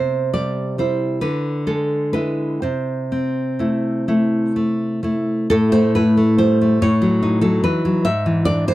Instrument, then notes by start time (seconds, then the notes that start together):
nylon-string guitar
Already playing: C3 C5
0.34 G3 D5
0.78 G3 E4 C5
1.21 D3 B4
1.67 G#3 A4
2.13 G#3 E4 B4
2.62 C3 C5
3.12 C4
3.59 A3 E4
4.08 A3 E4
4.56 A3
5.03 A3 E4
5.50 A2 A4
5.72 A3 C5
5.95 E4 B4
6.17 A3
6.38 G3 C5
6.61 A3
6.82 A2 C#5
7.02 F#3
7.23 D#4
7.41 F#3 A4
7.63 E3 B4
7.85 F#3
8.05 G#2 E5
8.26 E3
8.45 D4 D5
8.68 E3 C5